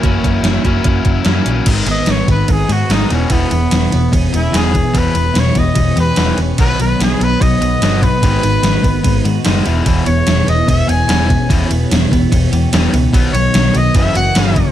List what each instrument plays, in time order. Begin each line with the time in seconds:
Already playing: string machine A#4 E5 F#5 C#6
0.02 picked electric bass F#1, clean electric guitar E3 A#3 C#4 F#4, overdriven electric guitar F#3 A#3 C#4, kick, closed hi-hat
0.06 overdriven electric guitar E4
0.24 picked electric bass F#1, kick, closed hi-hat
0.43 picked electric bass F#1, snare, closed hi-hat
0.64 picked electric bass F#1, clean electric guitar E3 A#3 C#4 F#4, overdriven electric guitar F#3 A#3 C#4 E4, kick, closed hi-hat
0.84 picked electric bass F#1, kick, closed hi-hat
1.05 picked electric bass F#1, kick, closed hi-hat
1.24 picked electric bass F#2, clean electric guitar E3 A#3 C#4 F#4, overdriven electric guitar F#3 A#3 C#4 E4, snare, closed hi-hat
1.46 picked electric bass A#1, closed hi-hat
1.66 picked electric bass G#1, overdriven electric guitar G#2 D#3 G#3, clean electric guitar D#3, string machine G#3 G#4 B4 F#5, kick, crash, ride
1.86 picked electric bass G#1, overdriven electric guitar G#2 D#3, clean electric guitar B3, ride
1.91 trumpet D#5
2.06 picked electric bass G#1, overdriven electric guitar G#2 D#3, clean electric guitar D#3, snare, ride
2.11 trumpet C#5
2.28 picked electric bass G#1, overdriven electric guitar G#2 D#3, clean electric guitar B3, trumpet B4, kick, ride
2.48 picked electric bass G#1, overdriven electric guitar G#2 D#3, clean electric guitar D#4, trumpet G#4, kick, ride
2.69 overdriven electric guitar G#2 D#3, picked electric bass G#2, clean electric guitar F#4, trumpet F#4, ride
2.89 picked electric bass G#1, overdriven electric guitar G#2 D#3 G#3, clean electric guitar D#4, trumpet D#4, snare, ride
3.10 picked electric bass E1, overdriven electric guitar E2 B2 E3, string machine E3 E4 C#5, clean electric guitar E3, trumpet C#4, ride
3.30 picked electric bass E1, overdriven electric guitar E2 B2 E3, clean electric guitar E3, trumpet B3, kick, ride
3.51 picked electric bass E1, overdriven electric guitar E2 B2, clean electric guitar B3, ride
3.71 picked electric bass E1, overdriven electric guitar E2 B2, clean electric guitar E3, snare, ride
3.91 picked electric bass E1, overdriven electric guitar E2 B2, clean electric guitar B3, ride
4.12 picked electric bass E1, overdriven electric guitar E2 B2, clean electric guitar C#4, kick, ride
4.33 picked electric bass E1, overdriven electric guitar E2 B2, trumpet E4, clean electric guitar G#4, ride
4.52 picked electric bass E1, overdriven electric guitar E2 B2 E3, clean electric guitar C#4, snare, ride
4.57 trumpet G#4
4.74 overdriven electric guitar E2 B2, clean electric guitar B3, kick, ride
4.93 picked electric bass E1, overdriven electric guitar E2 B2 E3, clean electric guitar E3, string machine G4, trumpet B4, kick, ride
5.15 picked electric bass E1, overdriven electric guitar E2 B2, clean electric guitar B3, ride
5.34 picked electric bass E1, overdriven electric guitar E2 B2, clean electric guitar E3, snare, ride
5.39 trumpet C#5
5.55 picked electric bass E1, overdriven electric guitar E2 B2, clean electric guitar B3, trumpet D#5, kick, ride
5.75 picked electric bass E1, overdriven electric guitar E2 B2, clean electric guitar C#4, kick, ride
5.96 overdriven electric guitar E2 B2, picked electric bass E2, clean electric guitar G4, ride
6.00 trumpet B4
6.16 picked electric bass E1, overdriven electric guitar E2 B2 E3, clean electric guitar C#4, snare, ride
6.38 picked electric bass E1, overdriven electric guitar E2 B2, clean electric guitar B3, ride
6.58 picked electric bass B1, overdriven electric guitar B2 F#3 B3, clean electric guitar D#3, string machine B3 F#4 D#5, trumpet B4, kick, ride
6.79 picked electric bass B1, overdriven electric guitar B2 F#3, clean electric guitar B3, trumpet B4, ride
7.00 picked electric bass B1, overdriven electric guitar B2 F#3, clean electric guitar D#3, trumpet G#4, snare, ride
7.20 picked electric bass B1, overdriven electric guitar B2 F#3, clean electric guitar B3, trumpet B4, ride
7.40 picked electric bass B1, overdriven electric guitar B2 F#3, clean electric guitar C#4, trumpet D#5, kick, ride
7.60 picked electric bass B1, overdriven electric guitar B2 F#3, clean electric guitar F#4, ride
7.81 picked electric bass G1, overdriven electric guitar B2 F#3 B3, clean electric guitar C#4, snare, ride
8.02 overdriven electric guitar B2 F#3, clean electric guitar B3, trumpet B4, kick, ride
8.22 picked electric bass G#1, overdriven electric guitar G#2 D#3 G#3, clean electric guitar D#3, string machine G#3 D#4 B4, kick, ride
8.42 picked electric bass G#1, overdriven electric guitar G#2 D#3, clean electric guitar B3, ride
8.63 picked electric bass G#1, overdriven electric guitar G#2 D#3, clean electric guitar D#3, snare, ride
8.83 picked electric bass G#1, overdriven electric guitar G#2 D#3, clean electric guitar B3, kick, ride
9.03 picked electric bass G#1, overdriven electric guitar G#2 D#3, clean electric guitar D#4, kick, ride
9.24 overdriven electric guitar G#2 D#3, picked electric bass G#2, clean electric guitar F#4, ride
9.44 picked electric bass F#1, overdriven electric guitar G#2 D#3 G#3, clean electric guitar D#4, snare, ride
9.65 picked electric bass E1, overdriven electric guitar E2 B2 E3, clean electric guitar E3, string machine E3 E4 G#4 C#5, ride
9.85 picked electric bass E1, overdriven electric guitar E2 B2 E3, clean electric guitar E3, kick, ride
10.06 picked electric bass E1, overdriven electric guitar E2 B2, clean electric guitar B3, trumpet C#5, ride
10.27 picked electric bass E1, overdriven electric guitar E2 B2, clean electric guitar E3, snare, ride
10.46 picked electric bass E1, overdriven electric guitar E2 B2, clean electric guitar B3, trumpet D#5, ride
10.67 picked electric bass E1, overdriven electric guitar E2 B2, clean electric guitar C#4, trumpet E5, kick, ride
10.87 picked electric bass E1, overdriven electric guitar E2 B2, clean electric guitar G#4, trumpet G#5, ride
11.08 picked electric bass E1, overdriven electric guitar E2 B2 E3, clean electric guitar C#4, snare, ride
11.29 overdriven electric guitar E2 B2, clean electric guitar B3, kick, ride
11.49 picked electric bass E1, overdriven electric guitar E2 B2 E3, clean electric guitar E3, string machine E4 G4, kick, ride
11.70 picked electric bass E1, overdriven electric guitar E2 B2, clean electric guitar B3, ride
11.91 picked electric bass E1, overdriven electric guitar E2 B2, clean electric guitar E3, snare, ride
12.11 picked electric bass E1, overdriven electric guitar E2 B2, clean electric guitar B3, kick, ride
12.31 picked electric bass E1, overdriven electric guitar E2 B2, clean electric guitar C#4, kick, ride
12.52 picked electric bass E2, overdriven electric guitar E2 B2, clean electric guitar G4, ride
12.73 picked electric bass E1, overdriven electric guitar E2 B2 E3, clean electric guitar C#4, snare, ride
12.93 picked electric bass C#2, overdriven electric guitar E2 B2, clean electric guitar B3, ride
13.13 picked electric bass B1, overdriven electric guitar B2 F#3 B3, clean electric guitar D#3, string machine B3 F#4 C#5 D#5, kick, ride
13.33 picked electric bass B1, overdriven electric guitar B2 F#3, clean electric guitar B3, trumpet C#5, ride
13.54 picked electric bass B1, overdriven electric guitar B2 F#3, clean electric guitar D#3, snare, ride
13.73 picked electric bass B1, overdriven electric guitar B2 F#3, clean electric guitar B3, trumpet D#5, ride
13.95 picked electric bass F#1, overdriven electric guitar F#2 C#3 E3, clean electric guitar E3, string machine F#3 A#4 E5, trumpet E5, kick, ride
14.15 picked electric bass F#1, overdriven electric guitar F#2 C#3, clean electric guitar F#4, trumpet F#5, ride
14.35 picked electric bass G1, overdriven electric guitar F#2 C#3 E3, clean electric guitar C#4, snare, ride
14.56 overdriven electric guitar F#2 C#3, clean electric guitar A#3, kick, ride